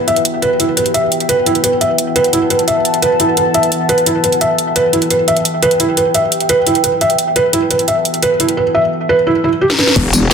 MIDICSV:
0, 0, Header, 1, 6, 480
1, 0, Start_track
1, 0, Key_signature, 1, "minor"
1, 0, Tempo, 346821
1, 346, Time_signature, 4, 2, 24, 8
1, 14306, End_track
2, 0, Start_track
2, 0, Title_t, "Ambient pad"
2, 0, Program_c, 0, 92
2, 0, Note_on_c, 0, 64, 78
2, 0, Note_on_c, 0, 71, 73
2, 0, Note_on_c, 0, 78, 74
2, 0, Note_on_c, 0, 79, 87
2, 2251, Note_off_c, 0, 79, 0
2, 2264, Note_on_c, 0, 81, 91
2, 6090, Note_off_c, 0, 81, 0
2, 6106, Note_on_c, 0, 79, 88
2, 9931, Note_off_c, 0, 79, 0
2, 9944, Note_on_c, 0, 81, 88
2, 11810, Note_off_c, 0, 64, 0
2, 11810, Note_off_c, 0, 71, 0
2, 11810, Note_off_c, 0, 78, 0
2, 11869, Note_off_c, 0, 81, 0
2, 13784, Note_on_c, 0, 78, 76
2, 13785, Note_on_c, 0, 79, 91
2, 14306, Note_off_c, 0, 78, 0
2, 14306, Note_off_c, 0, 79, 0
2, 14306, End_track
3, 0, Start_track
3, 0, Title_t, "Felt piano"
3, 0, Program_c, 1, 0
3, 104, Note_on_c, 1, 76, 75
3, 192, Note_off_c, 1, 76, 0
3, 584, Note_on_c, 1, 71, 96
3, 672, Note_off_c, 1, 71, 0
3, 824, Note_on_c, 1, 64, 74
3, 877, Note_off_c, 1, 64, 0
3, 1064, Note_on_c, 1, 71, 74
3, 1117, Note_off_c, 1, 71, 0
3, 1304, Note_on_c, 1, 76, 80
3, 1392, Note_off_c, 1, 76, 0
3, 1784, Note_on_c, 1, 71, 97
3, 1872, Note_off_c, 1, 71, 0
3, 2025, Note_on_c, 1, 64, 72
3, 2078, Note_off_c, 1, 64, 0
3, 2264, Note_on_c, 1, 71, 80
3, 2317, Note_off_c, 1, 71, 0
3, 2505, Note_on_c, 1, 76, 72
3, 2593, Note_off_c, 1, 76, 0
3, 2984, Note_on_c, 1, 71, 96
3, 3072, Note_off_c, 1, 71, 0
3, 3224, Note_on_c, 1, 64, 81
3, 3277, Note_off_c, 1, 64, 0
3, 3464, Note_on_c, 1, 71, 75
3, 3517, Note_off_c, 1, 71, 0
3, 3703, Note_on_c, 1, 76, 76
3, 3792, Note_off_c, 1, 76, 0
3, 4184, Note_on_c, 1, 71, 96
3, 4272, Note_off_c, 1, 71, 0
3, 4425, Note_on_c, 1, 64, 72
3, 4478, Note_off_c, 1, 64, 0
3, 4665, Note_on_c, 1, 71, 72
3, 4718, Note_off_c, 1, 71, 0
3, 4906, Note_on_c, 1, 76, 74
3, 4993, Note_off_c, 1, 76, 0
3, 5385, Note_on_c, 1, 71, 99
3, 5472, Note_off_c, 1, 71, 0
3, 5625, Note_on_c, 1, 64, 74
3, 5677, Note_off_c, 1, 64, 0
3, 5864, Note_on_c, 1, 71, 74
3, 5917, Note_off_c, 1, 71, 0
3, 6104, Note_on_c, 1, 76, 81
3, 6192, Note_off_c, 1, 76, 0
3, 6585, Note_on_c, 1, 71, 98
3, 6673, Note_off_c, 1, 71, 0
3, 6824, Note_on_c, 1, 64, 73
3, 6877, Note_off_c, 1, 64, 0
3, 7065, Note_on_c, 1, 71, 81
3, 7117, Note_off_c, 1, 71, 0
3, 7304, Note_on_c, 1, 76, 75
3, 7392, Note_off_c, 1, 76, 0
3, 7785, Note_on_c, 1, 71, 99
3, 7873, Note_off_c, 1, 71, 0
3, 8024, Note_on_c, 1, 64, 81
3, 8077, Note_off_c, 1, 64, 0
3, 8266, Note_on_c, 1, 71, 74
3, 8318, Note_off_c, 1, 71, 0
3, 8506, Note_on_c, 1, 76, 75
3, 8593, Note_off_c, 1, 76, 0
3, 8986, Note_on_c, 1, 71, 98
3, 9073, Note_off_c, 1, 71, 0
3, 9226, Note_on_c, 1, 64, 74
3, 9278, Note_off_c, 1, 64, 0
3, 9465, Note_on_c, 1, 71, 75
3, 9518, Note_off_c, 1, 71, 0
3, 9705, Note_on_c, 1, 76, 76
3, 9793, Note_off_c, 1, 76, 0
3, 10185, Note_on_c, 1, 71, 98
3, 10272, Note_off_c, 1, 71, 0
3, 10425, Note_on_c, 1, 64, 75
3, 10477, Note_off_c, 1, 64, 0
3, 10664, Note_on_c, 1, 71, 76
3, 10717, Note_off_c, 1, 71, 0
3, 10903, Note_on_c, 1, 76, 80
3, 10992, Note_off_c, 1, 76, 0
3, 11384, Note_on_c, 1, 71, 98
3, 11472, Note_off_c, 1, 71, 0
3, 11624, Note_on_c, 1, 64, 75
3, 11677, Note_off_c, 1, 64, 0
3, 11863, Note_on_c, 1, 71, 80
3, 11917, Note_off_c, 1, 71, 0
3, 12103, Note_on_c, 1, 76, 76
3, 12192, Note_off_c, 1, 76, 0
3, 12584, Note_on_c, 1, 71, 97
3, 12672, Note_off_c, 1, 71, 0
3, 12824, Note_on_c, 1, 64, 78
3, 12877, Note_off_c, 1, 64, 0
3, 13065, Note_on_c, 1, 64, 75
3, 13118, Note_off_c, 1, 64, 0
3, 13304, Note_on_c, 1, 67, 75
3, 13392, Note_off_c, 1, 67, 0
3, 13545, Note_on_c, 1, 71, 74
3, 13676, Note_off_c, 1, 71, 0
3, 14306, End_track
4, 0, Start_track
4, 0, Title_t, "Wobble bass"
4, 0, Program_c, 2, 39
4, 13784, Note_on_c, 2, 28, 97
4, 14306, Note_off_c, 2, 28, 0
4, 14306, End_track
5, 0, Start_track
5, 0, Title_t, "Impact"
5, 0, Program_c, 3, 103
5, 13784, Note_on_c, 3, 60, 80
5, 14306, Note_off_c, 3, 60, 0
5, 14306, End_track
6, 0, Start_track
6, 0, Title_t, "Drums"
6, 107, Note_on_c, 9, 42, 63
6, 227, Note_off_c, 9, 42, 0
6, 227, Note_on_c, 9, 42, 37
6, 347, Note_off_c, 9, 42, 0
6, 347, Note_on_c, 9, 42, 89
6, 485, Note_off_c, 9, 42, 0
6, 587, Note_on_c, 9, 42, 64
6, 725, Note_off_c, 9, 42, 0
6, 827, Note_on_c, 9, 42, 88
6, 965, Note_off_c, 9, 42, 0
6, 1067, Note_on_c, 9, 42, 64
6, 1186, Note_off_c, 9, 42, 0
6, 1186, Note_on_c, 9, 42, 36
6, 1306, Note_off_c, 9, 42, 0
6, 1306, Note_on_c, 9, 42, 88
6, 1445, Note_off_c, 9, 42, 0
6, 1546, Note_on_c, 9, 42, 64
6, 1667, Note_off_c, 9, 42, 0
6, 1667, Note_on_c, 9, 42, 36
6, 1786, Note_off_c, 9, 42, 0
6, 1786, Note_on_c, 9, 42, 91
6, 1925, Note_off_c, 9, 42, 0
6, 2026, Note_on_c, 9, 42, 64
6, 2147, Note_off_c, 9, 42, 0
6, 2147, Note_on_c, 9, 42, 36
6, 2266, Note_off_c, 9, 42, 0
6, 2266, Note_on_c, 9, 42, 88
6, 2405, Note_off_c, 9, 42, 0
6, 2507, Note_on_c, 9, 42, 62
6, 2645, Note_off_c, 9, 42, 0
6, 2746, Note_on_c, 9, 42, 86
6, 2885, Note_off_c, 9, 42, 0
6, 2986, Note_on_c, 9, 42, 63
6, 3106, Note_off_c, 9, 42, 0
6, 3106, Note_on_c, 9, 42, 35
6, 3226, Note_off_c, 9, 42, 0
6, 3226, Note_on_c, 9, 42, 86
6, 3364, Note_off_c, 9, 42, 0
6, 3465, Note_on_c, 9, 42, 62
6, 3585, Note_off_c, 9, 42, 0
6, 3585, Note_on_c, 9, 42, 35
6, 3705, Note_off_c, 9, 42, 0
6, 3705, Note_on_c, 9, 42, 88
6, 3843, Note_off_c, 9, 42, 0
6, 3945, Note_on_c, 9, 42, 60
6, 4066, Note_off_c, 9, 42, 0
6, 4066, Note_on_c, 9, 42, 35
6, 4186, Note_off_c, 9, 42, 0
6, 4186, Note_on_c, 9, 42, 86
6, 4324, Note_off_c, 9, 42, 0
6, 4425, Note_on_c, 9, 42, 61
6, 4563, Note_off_c, 9, 42, 0
6, 4665, Note_on_c, 9, 42, 82
6, 4803, Note_off_c, 9, 42, 0
6, 4905, Note_on_c, 9, 42, 60
6, 5025, Note_off_c, 9, 42, 0
6, 5025, Note_on_c, 9, 42, 34
6, 5145, Note_off_c, 9, 42, 0
6, 5145, Note_on_c, 9, 42, 84
6, 5283, Note_off_c, 9, 42, 0
6, 5385, Note_on_c, 9, 42, 61
6, 5506, Note_off_c, 9, 42, 0
6, 5506, Note_on_c, 9, 42, 34
6, 5625, Note_off_c, 9, 42, 0
6, 5625, Note_on_c, 9, 42, 89
6, 5763, Note_off_c, 9, 42, 0
6, 5865, Note_on_c, 9, 42, 59
6, 5985, Note_off_c, 9, 42, 0
6, 5985, Note_on_c, 9, 42, 33
6, 6105, Note_off_c, 9, 42, 0
6, 6105, Note_on_c, 9, 42, 87
6, 6243, Note_off_c, 9, 42, 0
6, 6345, Note_on_c, 9, 42, 60
6, 6484, Note_off_c, 9, 42, 0
6, 6585, Note_on_c, 9, 42, 86
6, 6723, Note_off_c, 9, 42, 0
6, 6825, Note_on_c, 9, 42, 61
6, 6946, Note_off_c, 9, 42, 0
6, 6946, Note_on_c, 9, 42, 34
6, 7065, Note_off_c, 9, 42, 0
6, 7065, Note_on_c, 9, 42, 87
6, 7203, Note_off_c, 9, 42, 0
6, 7305, Note_on_c, 9, 42, 61
6, 7425, Note_off_c, 9, 42, 0
6, 7425, Note_on_c, 9, 42, 35
6, 7545, Note_off_c, 9, 42, 0
6, 7545, Note_on_c, 9, 42, 90
6, 7683, Note_off_c, 9, 42, 0
6, 7785, Note_on_c, 9, 42, 61
6, 7905, Note_off_c, 9, 42, 0
6, 7905, Note_on_c, 9, 42, 34
6, 8025, Note_off_c, 9, 42, 0
6, 8025, Note_on_c, 9, 42, 88
6, 8163, Note_off_c, 9, 42, 0
6, 8264, Note_on_c, 9, 42, 62
6, 8403, Note_off_c, 9, 42, 0
6, 8504, Note_on_c, 9, 42, 87
6, 8643, Note_off_c, 9, 42, 0
6, 8745, Note_on_c, 9, 42, 63
6, 8864, Note_off_c, 9, 42, 0
6, 8864, Note_on_c, 9, 42, 36
6, 8985, Note_off_c, 9, 42, 0
6, 8985, Note_on_c, 9, 42, 87
6, 9123, Note_off_c, 9, 42, 0
6, 9225, Note_on_c, 9, 42, 63
6, 9344, Note_off_c, 9, 42, 0
6, 9344, Note_on_c, 9, 42, 34
6, 9464, Note_off_c, 9, 42, 0
6, 9464, Note_on_c, 9, 42, 92
6, 9602, Note_off_c, 9, 42, 0
6, 9704, Note_on_c, 9, 42, 60
6, 9824, Note_off_c, 9, 42, 0
6, 9824, Note_on_c, 9, 42, 36
6, 9944, Note_off_c, 9, 42, 0
6, 9944, Note_on_c, 9, 42, 92
6, 10082, Note_off_c, 9, 42, 0
6, 10184, Note_on_c, 9, 42, 66
6, 10323, Note_off_c, 9, 42, 0
6, 10424, Note_on_c, 9, 42, 92
6, 10563, Note_off_c, 9, 42, 0
6, 10664, Note_on_c, 9, 42, 65
6, 10784, Note_off_c, 9, 42, 0
6, 10784, Note_on_c, 9, 42, 37
6, 10904, Note_off_c, 9, 42, 0
6, 10904, Note_on_c, 9, 42, 91
6, 11042, Note_off_c, 9, 42, 0
6, 11144, Note_on_c, 9, 42, 65
6, 11264, Note_off_c, 9, 42, 0
6, 11264, Note_on_c, 9, 42, 37
6, 11383, Note_off_c, 9, 42, 0
6, 11383, Note_on_c, 9, 42, 96
6, 11522, Note_off_c, 9, 42, 0
6, 11623, Note_on_c, 9, 42, 65
6, 11743, Note_off_c, 9, 42, 0
6, 11743, Note_on_c, 9, 42, 37
6, 11882, Note_off_c, 9, 42, 0
6, 13423, Note_on_c, 9, 38, 51
6, 13544, Note_off_c, 9, 38, 0
6, 13544, Note_on_c, 9, 38, 73
6, 13664, Note_off_c, 9, 38, 0
6, 13664, Note_on_c, 9, 38, 77
6, 13784, Note_on_c, 9, 42, 98
6, 13784, Note_on_c, 9, 49, 111
6, 13785, Note_on_c, 9, 36, 120
6, 13803, Note_off_c, 9, 38, 0
6, 13922, Note_off_c, 9, 42, 0
6, 13922, Note_off_c, 9, 49, 0
6, 13923, Note_off_c, 9, 36, 0
6, 14024, Note_on_c, 9, 42, 70
6, 14024, Note_on_c, 9, 54, 59
6, 14163, Note_off_c, 9, 42, 0
6, 14163, Note_off_c, 9, 54, 0
6, 14306, End_track
0, 0, End_of_file